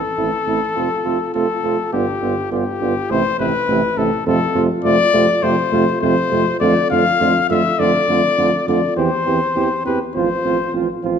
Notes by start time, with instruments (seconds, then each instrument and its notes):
Already playing: trumpet A4
0.17 tuba A1, euphonium A3, french horn C4, flugelhorn E4
0.46 tuba A1, euphonium A3, french horn C4, flugelhorn E4
0.75 tuba F1, euphonium A3, french horn C4, flugelhorn F4
1.04 tuba F1, euphonium A3, french horn C4, flugelhorn F4
1.34 tuba F1, euphonium A3, french horn C4, flugelhorn F4, trumpet A4
1.63 tuba F1, euphonium A3, french horn C4, flugelhorn F4
1.92 tuba G1, euphonium D3, french horn B3, flugelhorn F4, trumpet G4
2.21 tuba G1, euphonium D3, french horn B3, flugelhorn F4
2.51 tuba G1, euphonium D3, french horn B3, flugelhorn F4, trumpet G4
2.80 tuba G1, euphonium D3, french horn B3, flugelhorn F4
3.10 tuba A1, euphonium C3, french horn A3, flugelhorn E4, trumpet C5
3.39 tuba A1, euphonium C3, french horn A3, flugelhorn E4, trumpet B4
3.67 tuba A1, euphonium C3, french horn A3, flugelhorn E4
3.96 tuba A1, euphonium C3, french horn A3, flugelhorn E4, trumpet A4
4.26 tuba F2, euphonium C3, french horn A3, flugelhorn F4, trumpet A4
4.55 tuba F2, euphonium C3, french horn A3, flugelhorn F4
4.84 tuba F2, euphonium C3, french horn A3, flugelhorn F4, trumpet D5
5.13 tuba F2, euphonium C3, french horn A3, flugelhorn F4
5.42 tuba F2, euphonium C3, french horn A3, flugelhorn F4, trumpet C5
5.72 tuba F2, euphonium C3, french horn A3, flugelhorn F4
6.01 tuba F2, euphonium C3, french horn A3, flugelhorn F4, trumpet C5
6.30 tuba F2, euphonium C3, french horn A3, flugelhorn F4
6.60 tuba F2, euphonium D3, french horn A3, flugelhorn F4, trumpet D5
6.90 tuba F2, euphonium D3, french horn A3, flugelhorn F4, trumpet F5
7.20 tuba F2, euphonium D3, french horn A3, flugelhorn F4
7.50 tuba F2, euphonium D3, french horn A3, flugelhorn F4, trumpet E5
7.79 tuba F2, euphonium D3, french horn A3, flugelhorn F4, trumpet D5
8.08 tuba F2, euphonium D3, french horn A3, flugelhorn F4
8.37 tuba F2, euphonium D3, french horn A3, flugelhorn F4
8.67 tuba F2, euphonium D3, french horn A3, flugelhorn F4, trumpet D5
8.96 tuba E2, euphonium E3, french horn C4, flugelhorn G4, trumpet C5
9.26 tuba E2, euphonium E3, french horn C4, flugelhorn G4
9.55 tuba E2, euphonium E3, french horn C4, flugelhorn G4
9.85 tuba E2, euphonium E3, french horn C4, flugelhorn G4, trumpet B4
10.15 tuba A1, euphonium F3, french horn C4, flugelhorn F4, trumpet C5
10.44 tuba A1, euphonium F3, french horn C4, flugelhorn F4
10.73 tuba A1, euphonium F3, french horn C4, flugelhorn F4
11.03 tuba A1, euphonium F3, french horn C4, flugelhorn F4